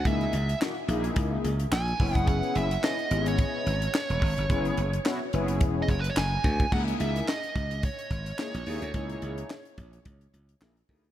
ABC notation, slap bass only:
X:1
M:4/4
L:1/16
Q:"Swing 16ths" 1/4=108
K:C#dor
V:1 name="Slap bass" clef=bass
C,,2 C,,2 z2 A,,,2 C,,2 C,,2 A,,,2 F,,,2- | F,,,2 F,,,2 z2 G,,,3 z G,,,2 z E,,, G,,, =G,,, | F,,,2 F,,,2 z2 F,,,2 E,,,2 F,,,2 F,,,2 =D,,2 | C,,2 C,,2 z2 C,,3 z G,,,2 z A,,, D,, =D,, |
C,,2 C,,2 z2 A,,,2 C,,2 C,,2 A,,,2 =D,,2 |]